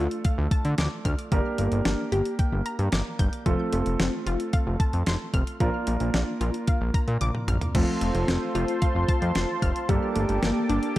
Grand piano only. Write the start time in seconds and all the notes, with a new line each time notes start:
Already playing: A3 D4 F4 A4
1.32 A#3 D4 G4 A#4
3.46 A3 C4 F4 A4
5.60 A#3 D4 F4 A#4
7.75 A3 C4 F4 A4
9.89 A#3 D4 G4 A4